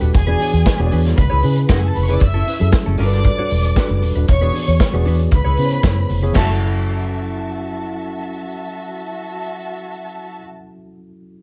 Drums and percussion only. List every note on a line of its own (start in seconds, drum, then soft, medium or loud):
0.01 closed hi-hat soft
0.14 kick loud
0.14 closed hi-hat medium
0.41 open hi-hat medium
0.54 closed hi-hat soft
0.66 kick loud
0.66 snare loud
0.66 closed hi-hat medium
0.91 open hi-hat medium
1.05 snare soft
1.05 closed hi-hat medium
1.17 kick loud
1.17 closed hi-hat medium
1.43 open hi-hat medium
1.56 closed hi-hat medium
1.69 kick loud
1.69 snare loud
1.69 closed hi-hat medium
1.95 open hi-hat medium
2.08 closed hi-hat medium
2.20 kick loud
2.20 closed hi-hat medium
2.48 open hi-hat medium
2.60 closed hi-hat soft
2.72 kick loud
2.72 snare loud
2.72 closed hi-hat medium
2.98 open hi-hat medium
3.12 snare soft
3.12 closed hi-hat soft
3.24 kick loud
3.24 closed hi-hat medium
3.50 open hi-hat medium
3.63 closed hi-hat medium
3.76 kick loud
3.76 snare loud
3.76 closed hi-hat medium
4.02 open hi-hat medium
4.16 closed hi-hat soft
4.28 kick loud
4.28 closed hi-hat medium
4.55 open hi-hat medium
4.68 closed hi-hat soft
4.80 kick loud
4.80 snare loud
4.80 closed hi-hat medium
5.05 open hi-hat medium
5.19 closed hi-hat soft
5.31 kick loud
5.31 closed hi-hat medium
5.57 open hi-hat medium
5.70 closed hi-hat medium
5.83 kick loud
5.83 snare loud
5.83 closed hi-hat medium
6.10 open hi-hat medium
6.22 closed hi-hat medium
6.35 kick loud
6.35 snare loud
6.35 crash medium